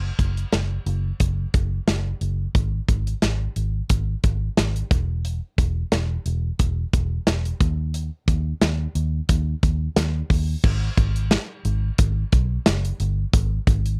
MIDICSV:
0, 0, Header, 1, 3, 480
1, 0, Start_track
1, 0, Key_signature, 5, "minor"
1, 0, Tempo, 674157
1, 1815, Time_signature, 4, 2, 24, 8
1, 9967, End_track
2, 0, Start_track
2, 0, Title_t, "Fingered electric bass"
2, 0, Program_c, 0, 33
2, 134, Note_on_c, 0, 30, 89
2, 307, Note_off_c, 0, 30, 0
2, 374, Note_on_c, 0, 30, 86
2, 547, Note_off_c, 0, 30, 0
2, 614, Note_on_c, 0, 30, 91
2, 787, Note_off_c, 0, 30, 0
2, 856, Note_on_c, 0, 30, 89
2, 1029, Note_off_c, 0, 30, 0
2, 1098, Note_on_c, 0, 30, 88
2, 1270, Note_off_c, 0, 30, 0
2, 1334, Note_on_c, 0, 30, 89
2, 1507, Note_off_c, 0, 30, 0
2, 1574, Note_on_c, 0, 30, 91
2, 1747, Note_off_c, 0, 30, 0
2, 1815, Note_on_c, 0, 32, 93
2, 1988, Note_off_c, 0, 32, 0
2, 2054, Note_on_c, 0, 32, 97
2, 2227, Note_off_c, 0, 32, 0
2, 2294, Note_on_c, 0, 32, 90
2, 2467, Note_off_c, 0, 32, 0
2, 2536, Note_on_c, 0, 32, 80
2, 2708, Note_off_c, 0, 32, 0
2, 2777, Note_on_c, 0, 32, 94
2, 2949, Note_off_c, 0, 32, 0
2, 3018, Note_on_c, 0, 32, 88
2, 3190, Note_off_c, 0, 32, 0
2, 3256, Note_on_c, 0, 32, 98
2, 3428, Note_off_c, 0, 32, 0
2, 3496, Note_on_c, 0, 28, 95
2, 3841, Note_off_c, 0, 28, 0
2, 3975, Note_on_c, 0, 28, 95
2, 4148, Note_off_c, 0, 28, 0
2, 4215, Note_on_c, 0, 28, 95
2, 4388, Note_off_c, 0, 28, 0
2, 4454, Note_on_c, 0, 28, 93
2, 4628, Note_off_c, 0, 28, 0
2, 4696, Note_on_c, 0, 28, 101
2, 4868, Note_off_c, 0, 28, 0
2, 4937, Note_on_c, 0, 28, 94
2, 5109, Note_off_c, 0, 28, 0
2, 5175, Note_on_c, 0, 28, 100
2, 5348, Note_off_c, 0, 28, 0
2, 5416, Note_on_c, 0, 39, 97
2, 5761, Note_off_c, 0, 39, 0
2, 5894, Note_on_c, 0, 39, 102
2, 6067, Note_off_c, 0, 39, 0
2, 6135, Note_on_c, 0, 39, 94
2, 6308, Note_off_c, 0, 39, 0
2, 6374, Note_on_c, 0, 39, 92
2, 6547, Note_off_c, 0, 39, 0
2, 6615, Note_on_c, 0, 39, 100
2, 6788, Note_off_c, 0, 39, 0
2, 6857, Note_on_c, 0, 39, 92
2, 7029, Note_off_c, 0, 39, 0
2, 7094, Note_on_c, 0, 39, 105
2, 7267, Note_off_c, 0, 39, 0
2, 7334, Note_on_c, 0, 39, 93
2, 7507, Note_off_c, 0, 39, 0
2, 7574, Note_on_c, 0, 32, 104
2, 7747, Note_off_c, 0, 32, 0
2, 7814, Note_on_c, 0, 32, 87
2, 8082, Note_off_c, 0, 32, 0
2, 8294, Note_on_c, 0, 32, 89
2, 8467, Note_off_c, 0, 32, 0
2, 8536, Note_on_c, 0, 32, 96
2, 8708, Note_off_c, 0, 32, 0
2, 8777, Note_on_c, 0, 35, 87
2, 8949, Note_off_c, 0, 35, 0
2, 9016, Note_on_c, 0, 30, 92
2, 9188, Note_off_c, 0, 30, 0
2, 9256, Note_on_c, 0, 31, 90
2, 9428, Note_off_c, 0, 31, 0
2, 9495, Note_on_c, 0, 32, 104
2, 9668, Note_off_c, 0, 32, 0
2, 9734, Note_on_c, 0, 32, 96
2, 9967, Note_off_c, 0, 32, 0
2, 9967, End_track
3, 0, Start_track
3, 0, Title_t, "Drums"
3, 134, Note_on_c, 9, 36, 75
3, 136, Note_on_c, 9, 42, 71
3, 205, Note_off_c, 9, 36, 0
3, 207, Note_off_c, 9, 42, 0
3, 266, Note_on_c, 9, 42, 54
3, 337, Note_off_c, 9, 42, 0
3, 374, Note_on_c, 9, 38, 97
3, 374, Note_on_c, 9, 42, 74
3, 445, Note_off_c, 9, 38, 0
3, 445, Note_off_c, 9, 42, 0
3, 616, Note_on_c, 9, 42, 63
3, 687, Note_off_c, 9, 42, 0
3, 854, Note_on_c, 9, 42, 99
3, 856, Note_on_c, 9, 36, 76
3, 925, Note_off_c, 9, 42, 0
3, 928, Note_off_c, 9, 36, 0
3, 1096, Note_on_c, 9, 42, 64
3, 1097, Note_on_c, 9, 36, 82
3, 1167, Note_off_c, 9, 42, 0
3, 1168, Note_off_c, 9, 36, 0
3, 1335, Note_on_c, 9, 38, 110
3, 1337, Note_on_c, 9, 42, 83
3, 1407, Note_off_c, 9, 38, 0
3, 1408, Note_off_c, 9, 42, 0
3, 1575, Note_on_c, 9, 42, 67
3, 1646, Note_off_c, 9, 42, 0
3, 1815, Note_on_c, 9, 36, 94
3, 1815, Note_on_c, 9, 42, 78
3, 1886, Note_off_c, 9, 36, 0
3, 1886, Note_off_c, 9, 42, 0
3, 2054, Note_on_c, 9, 36, 77
3, 2056, Note_on_c, 9, 42, 70
3, 2125, Note_off_c, 9, 36, 0
3, 2127, Note_off_c, 9, 42, 0
3, 2186, Note_on_c, 9, 42, 53
3, 2257, Note_off_c, 9, 42, 0
3, 2294, Note_on_c, 9, 38, 92
3, 2294, Note_on_c, 9, 42, 73
3, 2365, Note_off_c, 9, 38, 0
3, 2365, Note_off_c, 9, 42, 0
3, 2536, Note_on_c, 9, 42, 67
3, 2607, Note_off_c, 9, 42, 0
3, 2773, Note_on_c, 9, 42, 94
3, 2776, Note_on_c, 9, 36, 80
3, 2845, Note_off_c, 9, 42, 0
3, 2848, Note_off_c, 9, 36, 0
3, 3016, Note_on_c, 9, 42, 66
3, 3018, Note_on_c, 9, 36, 85
3, 3088, Note_off_c, 9, 42, 0
3, 3089, Note_off_c, 9, 36, 0
3, 3257, Note_on_c, 9, 38, 113
3, 3258, Note_on_c, 9, 42, 85
3, 3328, Note_off_c, 9, 38, 0
3, 3329, Note_off_c, 9, 42, 0
3, 3388, Note_on_c, 9, 42, 51
3, 3460, Note_off_c, 9, 42, 0
3, 3496, Note_on_c, 9, 36, 99
3, 3496, Note_on_c, 9, 42, 72
3, 3567, Note_off_c, 9, 36, 0
3, 3567, Note_off_c, 9, 42, 0
3, 3737, Note_on_c, 9, 42, 78
3, 3808, Note_off_c, 9, 42, 0
3, 3974, Note_on_c, 9, 36, 75
3, 3975, Note_on_c, 9, 42, 73
3, 4046, Note_off_c, 9, 36, 0
3, 4047, Note_off_c, 9, 42, 0
3, 4214, Note_on_c, 9, 42, 73
3, 4215, Note_on_c, 9, 38, 100
3, 4285, Note_off_c, 9, 42, 0
3, 4286, Note_off_c, 9, 38, 0
3, 4455, Note_on_c, 9, 42, 65
3, 4526, Note_off_c, 9, 42, 0
3, 4694, Note_on_c, 9, 42, 95
3, 4696, Note_on_c, 9, 36, 82
3, 4765, Note_off_c, 9, 42, 0
3, 4767, Note_off_c, 9, 36, 0
3, 4937, Note_on_c, 9, 36, 88
3, 4937, Note_on_c, 9, 42, 66
3, 5008, Note_off_c, 9, 36, 0
3, 5008, Note_off_c, 9, 42, 0
3, 5175, Note_on_c, 9, 38, 114
3, 5177, Note_on_c, 9, 42, 85
3, 5246, Note_off_c, 9, 38, 0
3, 5248, Note_off_c, 9, 42, 0
3, 5307, Note_on_c, 9, 42, 52
3, 5378, Note_off_c, 9, 42, 0
3, 5415, Note_on_c, 9, 36, 95
3, 5416, Note_on_c, 9, 42, 68
3, 5486, Note_off_c, 9, 36, 0
3, 5487, Note_off_c, 9, 42, 0
3, 5655, Note_on_c, 9, 42, 82
3, 5726, Note_off_c, 9, 42, 0
3, 5894, Note_on_c, 9, 36, 78
3, 5895, Note_on_c, 9, 42, 75
3, 5965, Note_off_c, 9, 36, 0
3, 5966, Note_off_c, 9, 42, 0
3, 6134, Note_on_c, 9, 38, 101
3, 6134, Note_on_c, 9, 42, 77
3, 6205, Note_off_c, 9, 38, 0
3, 6205, Note_off_c, 9, 42, 0
3, 6375, Note_on_c, 9, 42, 68
3, 6446, Note_off_c, 9, 42, 0
3, 6614, Note_on_c, 9, 42, 100
3, 6616, Note_on_c, 9, 36, 80
3, 6685, Note_off_c, 9, 42, 0
3, 6687, Note_off_c, 9, 36, 0
3, 6856, Note_on_c, 9, 42, 71
3, 6857, Note_on_c, 9, 36, 87
3, 6928, Note_off_c, 9, 36, 0
3, 6928, Note_off_c, 9, 42, 0
3, 7095, Note_on_c, 9, 38, 116
3, 7096, Note_on_c, 9, 42, 83
3, 7166, Note_off_c, 9, 38, 0
3, 7167, Note_off_c, 9, 42, 0
3, 7334, Note_on_c, 9, 36, 85
3, 7334, Note_on_c, 9, 46, 70
3, 7405, Note_off_c, 9, 36, 0
3, 7405, Note_off_c, 9, 46, 0
3, 7574, Note_on_c, 9, 36, 100
3, 7574, Note_on_c, 9, 49, 90
3, 7645, Note_off_c, 9, 36, 0
3, 7645, Note_off_c, 9, 49, 0
3, 7814, Note_on_c, 9, 36, 84
3, 7815, Note_on_c, 9, 42, 82
3, 7885, Note_off_c, 9, 36, 0
3, 7886, Note_off_c, 9, 42, 0
3, 7945, Note_on_c, 9, 42, 55
3, 8016, Note_off_c, 9, 42, 0
3, 8052, Note_on_c, 9, 38, 103
3, 8052, Note_on_c, 9, 42, 75
3, 8123, Note_off_c, 9, 38, 0
3, 8123, Note_off_c, 9, 42, 0
3, 8294, Note_on_c, 9, 42, 64
3, 8365, Note_off_c, 9, 42, 0
3, 8532, Note_on_c, 9, 42, 100
3, 8536, Note_on_c, 9, 36, 90
3, 8603, Note_off_c, 9, 42, 0
3, 8607, Note_off_c, 9, 36, 0
3, 8775, Note_on_c, 9, 42, 72
3, 8777, Note_on_c, 9, 36, 93
3, 8846, Note_off_c, 9, 42, 0
3, 8848, Note_off_c, 9, 36, 0
3, 9014, Note_on_c, 9, 38, 120
3, 9015, Note_on_c, 9, 42, 91
3, 9085, Note_off_c, 9, 38, 0
3, 9086, Note_off_c, 9, 42, 0
3, 9147, Note_on_c, 9, 42, 57
3, 9219, Note_off_c, 9, 42, 0
3, 9255, Note_on_c, 9, 42, 71
3, 9326, Note_off_c, 9, 42, 0
3, 9494, Note_on_c, 9, 42, 87
3, 9495, Note_on_c, 9, 36, 104
3, 9566, Note_off_c, 9, 36, 0
3, 9566, Note_off_c, 9, 42, 0
3, 9734, Note_on_c, 9, 36, 83
3, 9735, Note_on_c, 9, 42, 74
3, 9805, Note_off_c, 9, 36, 0
3, 9806, Note_off_c, 9, 42, 0
3, 9866, Note_on_c, 9, 42, 53
3, 9937, Note_off_c, 9, 42, 0
3, 9967, End_track
0, 0, End_of_file